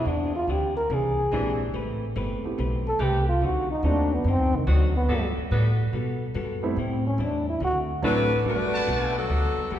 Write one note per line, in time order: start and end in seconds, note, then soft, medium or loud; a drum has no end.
0.00 0.46 E3 medium
0.00 0.46 C4 medium
0.00 0.46 D4 medium
0.00 0.11 E4 medium
0.00 0.46 G#4 medium
0.05 0.47 E2 medium
0.05 0.36 E3 medium
0.05 0.37 C4 soft
0.05 0.37 D4 soft
0.05 0.35 D4 medium
0.05 0.37 G#4 medium
0.36 0.53 F4 medium
0.47 0.89 D2 medium
0.47 0.78 E3 medium
0.47 0.79 C4 medium
0.47 0.79 D4 medium
0.47 0.76 G4 medium
0.47 0.79 G#4 medium
0.77 0.96 A#4 medium
0.90 1.31 C2 medium
0.90 1.20 E3 soft
0.90 1.20 C4 soft
0.90 1.21 D4 medium
0.90 1.21 G#4 soft
0.94 1.76 G#4 loud
1.32 1.73 A#1 medium
1.32 1.51 E3 medium
1.32 1.62 E3 medium
1.32 1.57 G#3 medium
1.32 1.51 C4 medium
1.32 1.58 C4 soft
1.32 1.62 C4 medium
1.32 1.51 D4 medium
1.32 1.58 D4 soft
1.32 1.63 D4 medium
1.32 1.58 E4 medium
1.32 1.58 G4 medium
1.32 1.51 G#4 medium
1.32 1.63 G#4 medium
1.74 2.15 A1 medium
1.74 2.04 A3 medium
1.74 2.04 C4 medium
1.74 2.04 G4 medium
1.74 2.04 B4 medium
2.16 2.42 G1 medium
2.16 2.46 A3 medium
2.16 2.46 C4 medium
2.16 2.46 G4 medium
2.16 2.46 B4 medium
2.44 2.57 A3 medium
2.44 2.57 B3 soft
2.44 2.57 C4 soft
2.44 2.58 E4 soft
2.44 2.58 G4 medium
2.44 muted upright bass stroke soft
2.58 2.98 B1 medium
2.58 2.87 A3 soft
2.58 2.88 C4 medium
2.58 2.88 G4 medium
2.58 2.88 B4 medium
2.88 3.05 A4 loud
2.99 3.40 C2 medium
2.99 3.19 C3 medium
2.99 3.29 A3 medium
2.99 3.19 A3 medium
2.99 3.19 B3 medium
2.99 3.30 C4 medium
2.99 3.19 G4 medium
2.99 3.30 G4 medium
2.99 3.30 B4 medium
3.03 3.28 G4 medium
3.29 3.47 F4 medium
3.41 3.82 D2 medium
3.41 3.71 D3 soft
3.41 3.72 F#3 soft
3.41 3.72 C4 medium
3.41 3.72 D#4 medium
3.45 3.71 F#4 loud
3.72 3.89 D#4 medium
3.83 4.24 D#2 medium
3.83 4.13 D3 medium
3.83 4.14 F#3 medium
3.83 4.09 A3 medium
3.83 4.09 C4 medium
3.83 4.14 C4 medium
3.83 4.10 D4 medium
3.83 4.10 D#4 medium
3.83 4.14 D#4 medium
3.83 4.10 F#4 medium
3.88 4.15 D4 medium
4.14 4.32 B3 medium
4.24 4.39 F#2 medium
4.24 4.56 D3 soft
4.24 4.56 F#3 soft
4.24 4.56 C4 medium
4.29 4.58 C4 loud
4.29 4.57 D#4 medium
4.39 4.52 D2 medium
4.53 4.66 C2 medium
4.53 4.72 D#3 medium
4.67 5.08 D2 loud
4.67 4.97 D3 medium
4.67 4.86 D#3 medium
4.67 4.98 F#3 medium
4.67 4.96 F#3 medium
4.67 4.86 C4 medium
4.67 4.98 C4 medium
4.67 4.86 D4 medium
4.67 4.98 D#4 medium
4.67 4.86 F#4 loud
4.97 5.35 B3 medium
5.09 5.35 G2 medium
5.09 5.28 G3 medium
5.09 5.39 G3 medium
5.09 5.28 B3 medium
5.09 5.40 B3 medium
5.09 5.28 F#4 medium
5.09 5.40 F#4 medium
5.09 5.28 A4 medium
5.13 5.41 A4 medium
5.37 muted upright bass stroke soft
5.51 5.92 A2 medium
5.51 5.71 G3 medium
5.51 5.81 G3 medium
5.51 5.71 B3 medium
5.51 5.81 B3 medium
5.51 5.70 F#4 medium
5.51 5.82 F#4 medium
5.51 5.82 A4 medium
5.51 5.71 B4 medium
5.93 6.34 B2 medium
5.93 6.23 G3 medium
5.93 6.23 B3 medium
5.93 6.24 F#4 medium
5.93 6.24 A4 medium
6.34 6.76 F#2 medium
6.34 6.65 G3 medium
6.34 6.65 B3 medium
6.34 6.65 F#4 medium
6.34 6.65 A4 medium
6.63 6.76 G3 medium
6.63 6.76 A3 medium
6.63 6.76 B3 medium
6.63 6.76 C4 medium
6.63 6.76 E4 medium
6.76 7.17 A2 medium
6.76 7.07 A2 medium
6.76 7.07 G3 medium
6.76 7.08 C4 medium
6.76 7.05 C4 medium
6.76 7.08 E4 medium
7.07 7.25 C#4 medium
7.18 7.59 E2 medium
7.18 7.49 A2 medium
7.18 7.49 G3 medium
7.18 7.49 C4 medium
7.18 7.49 E4 medium
7.23 7.49 D4 medium
7.50 7.62 E4 medium
7.60 8.01 D2 medium
7.60 7.91 D3 soft
7.60 7.91 A3 soft
7.60 7.92 C4 medium
7.60 7.92 F#4 medium
7.65 7.80 F#4 loud
8.02 8.44 A1 medium
8.02 8.33 D3 medium
8.02 8.28 F#3 medium
8.02 8.22 F#3 medium
8.02 8.28 A3 medium
8.02 8.33 A3 medium
8.02 8.43 A3 medium
8.02 8.29 C4 medium
8.02 8.33 C4 medium
8.02 8.23 C4 medium
8.02 8.29 D4 medium
8.02 8.23 D4 medium
8.02 8.43 D4 medium
8.02 8.29 E4 medium
8.02 8.43 F#4 medium
8.02 8.34 F#4 medium
8.02 8.23 A4 loud
8.02 8.43 B4 loud
8.45 8.86 G1 medium
8.45 9.09 G3 medium
8.45 8.75 G3 soft
8.45 9.10 A3 medium
8.45 9.13 A3 medium
8.45 9.10 B3 medium
8.45 8.75 B3 medium
8.45 9.10 D4 medium
8.45 9.13 D4 medium
8.45 9.10 F#4 medium
8.45 8.75 F#4 medium
8.45 9.13 F#4 medium
8.45 8.76 A4 medium
8.45 9.13 B4 loud
8.74 9.27 B4 medium
8.74 9.27 F#5 medium
8.74 9.27 A5 medium
8.87 9.28 B1 medium
8.87 9.17 G3 medium
8.87 9.17 B3 medium
8.87 9.17 F#4 medium
8.87 9.18 A4 medium
9.16 9.72 F#3 medium
9.16 9.71 B3 medium
9.16 9.72 D4 medium
9.16 9.72 A4 medium
9.29 9.55 D2 medium
9.29 9.59 G3 soft
9.29 9.59 B3 soft
9.29 9.60 F#4 soft
9.29 9.60 A4 soft
9.57 muted upright bass stroke soft
9.70 9.79 F#2 medium
9.70 9.79 D3 medium
9.70 9.79 G3 medium
9.70 9.79 A3 medium
9.70 9.79 B3 medium
9.70 9.79 F#4 medium
9.70 9.79 G4 medium
9.70 9.79 A4 medium